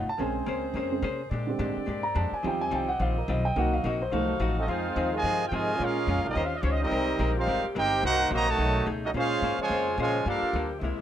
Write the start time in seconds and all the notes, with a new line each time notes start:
0.07 A5, muted upright bass stroke
0.18 A#1 C#3 G#3 A#3 C4 C#4 G#4 C5 G#5
0.46 C#2 A#3 C#4 G#4 C5
0.74 F2 A#3 C#4 G#4 C5
0.92 C#3 G#3 C4
1.02 C3 A#3 C#4 G#4 C5
1.30 A#2 G#3 C4 D4 G4 A#4 D5
1.47 D3 G3 G#3 C4
1.59 G#2 A#2 G#3 D4 G4
1.77 muted upright bass stroke
1.86 G2 A#2 G#3 D4 G4
2.03 A#5
2.15 F2 A#2 G#3 D4 G4 A5
2.32 G#5, muted upright bass stroke
2.42 D#2 D#3 F3 G3 C4 F4 D#5
2.47 G5
2.61 G#5
2.71 C2 D#3 G3 C4 F4
2.75 G5
2.89 F#5
3.00 A#1 D#3 G3 C4 F4 F5
3.18 A#4
3.28 B1 D#3 G3 C4 F4 D#5
3.45 G5
3.55 C2 C3 D#3 F#3 A#3 D#4 F#4 A#4 F#5
3.74 F5
3.84 A#1 C3 A#3 D#4 F#4 D#5
4.02 C5
4.11 C2 D#3 F3 F#3 A3 D#4 F#4 A4 F5
4.40 A1 F3 A3 D#4 F#4
4.57 A3 C4 D#4 F#4 A4 D#5
4.67 F2 D#3 F3 G#3 C4 D#4 F4 G#4 C5 F5
4.71 G#4
4.96 D#2 F3 C4 D#4 G#4
5.12 C3 D#3 G#3 F4 C5 D#5 G#5
5.23 G2 F3 C4 D#4 G#4
5.48 G5
5.52 G#2 C3 D#3 F3 G#3 C4 D#4 F4 G#4 C5 D#5 G#5
5.77 A#2 C#3 G#3 A#3 C#4 F4
5.81 C#4 F4 G#4 A#4 F5
6.07 F2 A#2 G#3 C#4 F4
6.17 C#2
6.24 A#1 G3 A#3 D#4
6.28 C#4 G4 A#4 D#5
6.35 D#2 D#3 G3 C4 C#4 G4 C5
6.45 F5
6.56 D#5
6.62 C#2 D#3 C#4 G4 C5 C#5
6.70 D#5
6.80 G3 C4 D#4 G4 A#4 D#5
6.91 C2 C3 G3 G#3 A#3 C4 G4 A#4
7.19 A#1 G#3 C4 G4 A#4
7.37 G3 C4 D#4 F4 A#4 C5 F5
7.47 G#1 G#3 C4 G4 A#4
7.64 muted upright bass stroke
7.75 G1 G#3 C4 D#4 G4 A#4 C5 G5
8.02 C2 C3 F#3 A#3 D#4 F#4 A#4 C5 F#5
8.06 A#3 D#4 F#4
8.30 A#1 C3 D#3 F#3 A#3 D#4 F#4 D#5
8.34 C5 A#5
8.48 D#3 F#3 A3 F#4 C#5 D#5 A5
8.58 B1 B2 C#3 G#3 A3 D#4 G#4
8.85 C#2 B2 A3 D#4 G#4
9.04 F#3 A3 C#4 D#4 F#4 A4 D#5
9.14 A#2 C#3 G#3 A#3 C#4 F4 G#4 C5 F5
9.42 G#2 A#3 C#4 G#4 C5
9.58 C#3 F3 G#3 F4 C5 C#5 G#5, muted upright bass stroke
9.70 F2 A#3 C#4 G#4 C5
9.98 A#2 C#3 F3 G#3 A#3 C#4 F4 G#4 C5 C#5 G#5
10.25 G2 F3 G3 A#3 D4 F4 G4 A4 A#4 F5
10.42 muted upright bass stroke
10.53 D2 G3 A#3 F4 A4
10.79 C2 C3 G#3 E4
10.84 A#3 E4